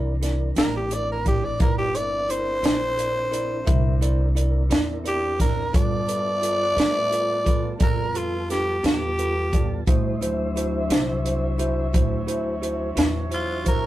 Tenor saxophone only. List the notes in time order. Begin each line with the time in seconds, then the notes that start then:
0.57 A#4
0.76 G4
0.94 D5
1.11 A#4
1.27 G4
1.44 D5
1.62 A#4
1.78 G4
1.96 D5
2.30 C5
5.07 G4
5.41 A#4
5.75 D5
7.82 A#4
8.17 F4
8.51 G4
8.86 G4
13.34 F4
13.68 A#4